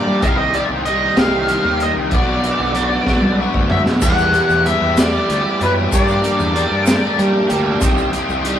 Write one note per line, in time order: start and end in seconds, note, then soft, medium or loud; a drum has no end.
0.00 0.21 G3 medium
0.00 0.22 A#3 medium
0.00 0.24 D4 medium
0.00 0.23 G4 medium
0.00 0.24 D5 medium
0.00 2.09 G5 medium
0.00 0.22 A5 medium
0.00 0.22 A#5 medium
0.07 0.19 G3 medium
0.22 0.59 C2 medium
0.22 0.86 C3 medium
0.22 0.84 D#3 medium
0.22 0.56 G3 medium
0.22 2.10 D#4 medium
0.22 0.54 D#4 medium
0.22 0.53 G4 medium
0.22 0.28 D#5 medium
0.22 2.11 C6 medium
0.22 kick loud
0.22 closed hi-hat medium
0.28 0.36 F5 medium
0.37 0.55 D#5 medium
0.54 0.85 G3 medium
0.54 0.86 D#4 medium
0.54 0.87 G4 medium
0.54 0.63 D5 medium
0.54 closed hi-hat medium
0.69 1.06 C2 medium
0.85 1.18 D#3 medium
0.85 1.18 G3 medium
0.85 1.17 D#4 medium
0.85 1.15 G4 medium
0.85 1.18 D#5 medium
0.85 closed hi-hat medium
1.16 1.54 C2 medium
1.16 1.82 C3 medium
1.16 1.47 D#3 medium
1.16 1.48 G3 medium
1.16 1.50 D#4 medium
1.16 1.51 G4 medium
1.16 1.82 F5 medium
1.16 snare loud
1.16 closed hi-hat medium
1.48 2.10 D#3 medium
1.48 2.11 G3 medium
1.48 2.11 D#4 medium
1.48 2.12 G4 medium
1.48 closed hi-hat medium
1.64 1.89 D#2 medium
1.80 1.91 D#5 medium
1.80 closed hi-hat medium
1.96 2.08 C2 medium
2.11 2.49 B1 medium
2.11 2.75 B2 medium
2.11 2.73 F#3 medium
2.11 2.45 B3 medium
2.11 2.44 D4 medium
2.11 2.42 F#4 medium
2.11 4.00 D5 medium
2.11 3.36 D5 medium
2.11 4.00 F#5 medium
2.11 4.01 B5 medium
2.11 kick loud
2.11 closed hi-hat medium
2.43 2.75 B3 medium
2.43 2.76 D4 medium
2.43 2.77 F#4 medium
2.43 closed hi-hat medium
2.59 2.96 B1 medium
2.74 3.08 F#3 medium
2.74 3.07 B3 medium
2.74 3.06 D4 medium
2.74 3.05 F#4 medium
2.74 closed hi-hat medium
3.06 3.43 B1 medium
3.06 3.72 B2 medium
3.06 3.37 F#3 medium
3.06 3.38 B3 medium
3.06 3.39 D4 medium
3.06 3.40 F#4 medium
3.06 kick medium
3.06 snare medium
3.22 high tom medium
3.38 4.00 F#3 medium
3.38 4.01 B3 medium
3.38 4.01 D4 medium
3.38 4.02 F#4 medium
3.54 3.79 D2 medium
3.54 kick medium
3.70 3.80 E5 medium
3.70 floor tom medium
3.86 3.98 B2 medium
3.86 snare medium
4.01 4.65 E2 medium
4.01 4.38 E2 medium
4.01 4.65 B2 medium
4.01 4.35 E3 loud
4.01 4.35 G3 loud
4.01 4.33 B3 loud
4.01 8.59 G4 medium
4.01 4.32 G4 medium
4.01 5.90 E5 medium
4.01 4.66 F#5 loud
4.01 5.91 B5 medium
4.01 7.78 D6 medium
4.01 kick loud
4.01 crash loud
4.01 shaker medium
4.18 shaker soft
4.33 4.64 E3 medium
4.33 4.66 G3 medium
4.33 4.67 B3 medium
4.33 4.68 G4 medium
4.33 closed hi-hat medium
4.33 shaker soft
4.49 4.74 E2 medium
4.49 shaker soft
4.65 4.99 E3 medium
4.65 4.99 G3 medium
4.65 4.97 B3 medium
4.65 4.96 G4 medium
4.65 4.99 E5 medium
4.65 closed hi-hat medium
4.81 5.18 E2 medium
4.97 5.27 E3 medium
4.97 5.29 G3 medium
4.97 5.30 B3 medium
4.97 5.32 G4 medium
4.97 5.63 D5 medium
4.97 snare loud
4.97 closed hi-hat medium
4.97 shaker medium
5.28 5.41 D2 medium
5.28 5.62 E3 medium
5.28 5.61 G3 medium
5.28 5.60 B3 medium
5.28 5.59 G4 medium
5.28 closed hi-hat medium
5.60 5.85 F#2 medium
5.60 5.91 E3 medium
5.60 5.92 G3 medium
5.60 5.90 B3 medium
5.60 5.94 G4 medium
5.60 5.71 B4 medium
5.60 closed hi-hat medium
5.60 shaker soft
5.91 6.54 G2 medium
5.91 6.17 G2 medium
5.91 6.55 D3 medium
5.91 6.25 G3 loud
5.91 6.23 A#3 medium
5.91 6.23 D4 loud
5.91 6.22 G4 loud
5.91 7.15 D5 medium
5.91 7.80 A5 medium
5.91 7.80 A#5 medium
5.91 kick loud
5.91 closed hi-hat medium
5.91 shaker medium
6.08 shaker soft
6.22 6.53 G3 medium
6.22 6.54 A#3 medium
6.22 6.56 D4 medium
6.22 6.57 G4 medium
6.22 closed hi-hat medium
6.22 shaker soft
6.39 6.64 E2 medium
6.39 shaker soft
6.54 6.88 G3 medium
6.54 6.87 A#3 medium
6.54 6.87 D4 medium
6.54 6.84 G4 medium
6.54 closed hi-hat medium
6.72 6.95 G2 medium
6.85 7.16 G3 medium
6.85 7.17 A#3 medium
6.85 7.19 D4 medium
6.85 7.19 G4 medium
6.85 snare loud
6.85 closed hi-hat medium
6.85 shaker medium
7.17 7.52 G3 medium
7.17 7.31 G3 medium
7.17 7.51 A#3 medium
7.17 7.51 D4 medium
7.17 7.48 G4 medium
7.17 closed hi-hat medium
7.50 7.75 D2 medium
7.50 7.81 G3 medium
7.50 7.81 A#3 medium
7.50 7.84 D4 medium
7.50 7.79 G4 medium
7.50 closed hi-hat medium
7.50 shaker soft
7.81 8.18 C2 medium
7.81 8.44 C3 medium
7.81 8.43 D#3 loud
7.81 8.15 G3 loud
7.81 8.13 D#4 medium
7.81 8.11 G4 loud
7.81 8.59 D#5 medium
7.81 8.59 C6 medium
7.81 kick loud
7.81 closed hi-hat medium
7.81 shaker medium
7.98 shaker soft
8.13 8.44 G3 medium
8.13 8.45 D#4 medium
8.13 8.46 G4 medium
8.13 closed hi-hat medium
8.13 shaker soft
8.29 8.53 C2 medium
8.29 shaker soft
8.44 8.59 D#3 medium
8.44 8.59 G3 medium
8.44 8.59 D#4 medium
8.44 8.59 G4 medium
8.44 closed hi-hat medium